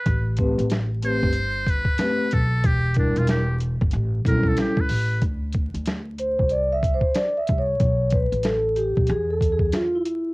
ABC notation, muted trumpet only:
X:1
M:4/4
L:1/16
Q:"Swing 16ths" 1/4=93
K:C
V:1 name="Muted trumpet"
B2 z4 c4 B4 A2 | G2 D F G2 z4 _B A G =B3 | z16 | z16 |]